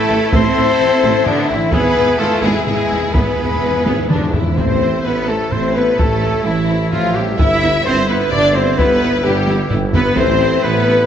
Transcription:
Already playing: cello section A3, woodwind section A3 E4 E5, trumpet E4, viola section E4, violin section A4, french horn section A4, flute A5
0.10 double bass section A1, tuba A1, viola section E3
0.33 tuba A1, double bass section A1, viola section A3, cello section C4, trumpet A4, french horn section C5, violin section C5, flute C6, taiko
0.56 tuba A1, double bass section A1, viola section A3
0.79 tuba A1, double bass section A1, viola section E3
1.02 tuba A1, double bass section A1, viola section A3
1.25 tuba A1, double bass section A1, cello section D3, viola section A3, trumpet B3, violin section D4, french horn section D4, flute D5, taiko low-mid
1.48 tuba A1, double bass section A1, viola section E3, cello section E3, trumpet C4, french horn section E4, violin section E4, flute E5
1.71 tuba G#1, double bass section G#1, viola section B3 E4, woodwind section B3, cello section B3, trumpet G#4, french horn section B4, violin section B4, flute B5, taiko
1.82 timpani E2
1.88 timpani E2
1.96 double bass section G#1, tuba G#1, timpani E2, viola section B3
2.03 timpani E2
2.10 timpani E2
2.18 double bass section G#1, tuba G#1, timpani E2, viola section G#3, cello section A3, trumpet F4, french horn section A4, violin section A4, flute A5
2.25 timpani E2
2.32 timpani E2
2.41 tuba G#1, double bass section G#1, timpani E2, cello section G#3, viola section B3, trumpet E4, french horn section G#4, violin section G#4, flute G#5
2.48 timpani E2
2.56 timpani E2
2.63 tuba G#1, double bass section G#1, timpani E2, trumpet E4, french horn section G#4, flute G#5, taiko low-mid
2.67 timpani E2, cello section G#3, viola section B3, violin section G#4
2.78 timpani E2
2.86 tuba G#1, timpani E2
2.91 double bass section G#1, timpani E2, viola section G#3
3.02 timpani E2
3.10 tuba G#1, timpani E2, trumpet G#4, french horn section B4, flute B5
3.14 double bass section G#1, timpani E2, cello section B3, viola section B3, violin section B4, taiko
3.25 timpani E2
3.32 timpani E2
3.38 tuba G#1, double bass section G#1, timpani E2, viola section B3
3.48 timpani E2
3.55 timpani E2
3.62 tuba G#1, double bass section G#1, timpani E2, viola section G#3
3.70 timpani E2
3.77 timpani E2
3.84 double bass section G#1, tuba G#1, timpani E2, viola section B3, taiko high
3.92 timpani E2
3.99 timpani E2
4.07 tuba G#1, double bass section G#1, timpani E2, cello section D3, viola section B3, french horn section D4, violin section D4, trumpet D4, taiko mid
4.15 timpani E2
4.22 timpani E2
4.31 timpani E2, cello section E3, viola section G#3, french horn section E4, violin section E4, trumpet E4, taiko low
4.35 tuba G#1, double bass section G#1, violin section E4
4.39 timpani E2
4.46 timpani E2
4.53 french horn section C5
4.57 tuba A1, double bass section A1, timpani A2, woodwind section A3 E4 E5, viola section C4 E4, cello section C4, violin section C5, trumpet C5, taiko
4.82 viola section C4 E4
5.01 cello section B3, french horn section B4, violin section B4
5.06 double bass section A1, tuba A1, viola section C4 E4, trumpet B4
5.26 cello section A3, viola section C4 E4, french horn section A4, violin section A4, trumpet A4
5.49 tuba A1, double bass section A1, viola section C4 E4, cello section C4, french horn section C5, trumpet C5, violin section C5, taiko low-mid
5.74 cello section B3, viola section C4 E4, french horn section B4, violin section B4, trumpet B4, taiko rim
5.97 tuba A1, double bass section A1, cello section A3, viola section C4 E4, french horn section A4, violin section A4, trumpet A4, taiko
6.22 viola section C4 E4
6.45 tuba A1, double bass section A1, cello section E3, viola section C4 E4, violin section E4, french horn section E4, trumpet E4
6.70 viola section C4 E4
6.92 tuba A1, double bass section A1, cello section F3, viola section C4 E4, french horn section F4, violin section F4, trumpet F4, taiko low-mid
7.15 cello section G3, viola section C4 E4, violin section G4, trumpet G4, french horn section G4
7.38 tuba G1, double bass section G1, woodwind section B3, viola section B3 E4, cello section E4, violin section E5, trumpet E5, french horn section E5, taiko
7.62 viola section B3 E4
7.84 tuba G1, double bass section G1, viola section B3 E4, cello section C4, french horn section C5, trumpet C5, violin section C5
8.07 viola section B3 E4, cello section B3, french horn section B4, trumpet B4, violin section B4
8.31 tuba G1, double bass section G1, viola section B3 E4, cello section D4, french horn section D5, violin section D5, trumpet D5, taiko low-mid
8.54 viola section B3 E4, cello section C4, french horn section C5, violin section C5, trumpet C5
8.76 tuba G1, double bass section G1, viola section B3 E4, cello section B3, french horn section B4, violin section B4, trumpet B4, taiko
9.02 viola section B3 E4
9.23 tuba G1, double bass section G1, cello section G3, viola section B3 E4, french horn section G4, trumpet G4, violin section G4
9.48 viola section B3 E4, taiko high
9.70 tuba G1, double bass section G1, viola section B3 E4, taiko low-mid
9.92 cello section B3, viola section B3 E4, french horn section B4, violin section B4, trumpet B4, taiko low
10.16 tuba A1, double bass section A1, timpani A2, woodwind section A3 E4 E5, viola section A3 E4, cello section C4, french horn section C5, violin section C5, trumpet C5, taiko
10.42 viola section A3 E4
10.61 tuba A1, double bass section A1, cello section B3, french horn section B4, trumpet B4, violin section B4
10.66 viola section A3 E4
10.88 viola section A3 E4

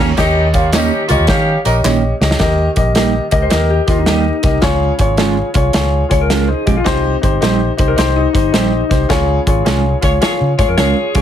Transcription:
0.00 fingered electric bass D#2, clean electric guitar D#3 A#3 C#4 G4, upright piano C#5 A#5
0.17 fingered electric bass D#2, upright piano D#3 G4 C#5 D#5, saxophone section C#4 D#4 G4, kick, snare, closed hi-hat, tambourine
0.53 saxophone section A#3 C#4 F4, upright piano G4 C#5 F5, kick, closed hi-hat, tambourine
0.71 clean electric guitar D#3 A#3 C#4 G4, saxophone section C#4 D#4 G4, upright piano G4 C#5 D#5, snare, clap, closed hi-hat, tambourine
1.07 fingered electric bass C#2, saxophone section A#3 C#4 F4, upright piano G4 C#5 D#5, closed hi-hat, tambourine
1.19 fingered electric bass D#2
1.27 fingered electric bass D#3, saxophone section C#4 D#4 G4, upright piano G4 C#5 F5, kick, snare, closed hi-hat, tambourine
1.64 fingered electric bass A#1, saxophone section D#4 G4 A#4, upright piano G4 C#5 D#5, closed hi-hat, tambourine
1.84 fingered electric bass A#1, clean electric guitar D#3 A#3 C#4 G4, upright piano G4 C#5 D#5, snare, clap, tambourine
2.21 fingered electric bass C#2, upright piano G4 C#5 D#5, snare, tambourine
2.31 snare
2.39 fingered electric bass D#2, upright piano D#3 G4 A#4 D#5, kick, snare, closed hi-hat
2.76 fingered electric bass A#1, upright piano G4 A#4 D#5, kick, closed hi-hat
2.95 clean electric guitar G3 A#3 D#4 G4, upright piano G4 A#4 D#5, snare, closed hi-hat
3.31 fingered electric bass C#2, upright piano G4 A#4 D#5, clean electric guitar D#5, kick, closed hi-hat
3.42 clean electric guitar C5
3.50 fingered electric bass D#2, upright piano G4 A#4 D#5, clean electric guitar A#4, snare, closed hi-hat
3.70 clean electric guitar G4
3.86 fingered electric bass D#2, clean electric guitar F4, upright piano G4 A#4 D#5, kick, closed hi-hat
3.98 clean electric guitar D#4
4.06 clean electric guitar G3 A#3 D#4 G4, upright piano G4 A#4 D#5, snare, closed hi-hat
4.43 fingered electric bass C2, upright piano G4 A#4 D#5, kick, snare, closed hi-hat
4.61 fingered electric bass C#2, upright piano C#3 F4 G#4 C#5, kick, snare, closed hi-hat
4.98 fingered electric bass G#1, upright piano F4 G#4 C#5, kick, closed hi-hat
5.17 clean electric guitar G#3 C#4 F4 G#4, upright piano F4 G#4 C#5, snare, closed hi-hat
5.54 fingered electric bass C2, upright piano F4 G#4 C#5, kick, closed hi-hat
5.73 fingered electric bass C#2, upright piano F4 G#4 C#5, snare, closed hi-hat
6.09 fingered electric bass C#2, upright piano F4 G#4 C#5, clean electric guitar C#5, kick, closed hi-hat
6.21 clean electric guitar A#4
6.30 clean electric guitar G#3 C#4 F4 G#4, snare, closed hi-hat
6.48 upright piano D#4 C5, clean electric guitar G#4
6.66 fingered electric bass A#1, clean electric guitar G#3 C#4 F4 G4 G#4, upright piano G4 D#5, kick, closed hi-hat
6.76 clean electric guitar F4, upright piano G#4 F5
6.84 fingered electric bass C2, upright piano C3 D#4 G4 C5, kick, snare, closed hi-hat
7.21 fingered electric bass G1, upright piano D#4 G4 C5, kick, closed hi-hat
7.41 fingered electric bass A#1, clean electric guitar G3 C4 D#4 G4, upright piano D#4 G4 C5, snare, closed hi-hat
7.77 fingered electric bass C2, upright piano D#4 G4 C5, kick, closed hi-hat
7.88 clean electric guitar A#4
7.96 fingered electric bass C2, upright piano D#4 G4 C5, clean electric guitar G4, snare, closed hi-hat
8.16 clean electric guitar D#4
8.33 fingered electric bass G1, upright piano D#4 G4 C5, kick, closed hi-hat
8.52 fingered electric bass A#1, clean electric guitar G3 C4 D#4 G4, upright piano D#4 G4 C5, snare, closed hi-hat
8.89 fingered electric bass C2, upright piano D#4 G4 C5, kick, snare, closed hi-hat
9.09 fingered electric bass C#2, upright piano C#3 F4 G#4 C#5, kick, snare, closed hi-hat
9.46 fingered electric bass G#1, upright piano F4 G#4 C#5, kick, closed hi-hat
9.65 fingered electric bass C2, clean electric guitar G#3 C#4 F4 G#4, upright piano F4 G#4 C#5, snare, closed hi-hat
10.01 fingered electric bass C#2, upright piano F4 G#4 C#5, saxophone section F4 G#4 C#5, kick, closed hi-hat
10.21 upright piano F4 G#4 C#5, saxophone section F4 G#4 C#5, snare, closed hi-hat
10.41 fingered electric bass C#3
10.58 fingered electric bass G#2, upright piano F4 G#4 C#5, saxophone section F4 G#4 C#5, clean electric guitar C#5, kick, closed hi-hat
10.68 fingered electric bass F2, clean electric guitar A#4
10.77 fingered electric bass C#2, clean electric guitar G#3 C#4 F4 G#4, upright piano F4 G#4 C#5, saxophone section F4 G#4 C#5, snare, closed hi-hat
10.96 clean electric guitar G#4
11.14 fingered electric bass C2, clean electric guitar G#3 C#4 F4 G4 G#4, upright piano F4 G#4 C#5, kick, snare, closed hi-hat

